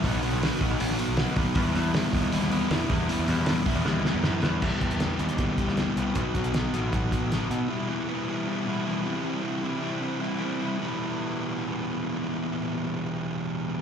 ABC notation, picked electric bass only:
X:1
M:4/4
L:1/16
Q:1/4=156
K:Em
V:1 name="Picked electric bass" clef=bass
B,,, B,,, B,,, B,,,2 z2 B,,, A,,,2 z B,,,2 z ^D,, z | E,,2 E,,2 z2 ^D,,6 E,, z E,,2 | z E,, E,, E,,2 z2 E,, ^D,,2 z E,, F,,2 E,,2 | E,, z E,,4 ^D,,4- D,, D,,2 z C,,2 |
B,,, z B,,,4 A,,,4- A,,, A,,,2 z B,,2 | z16 | z16 | z16 |
z16 |]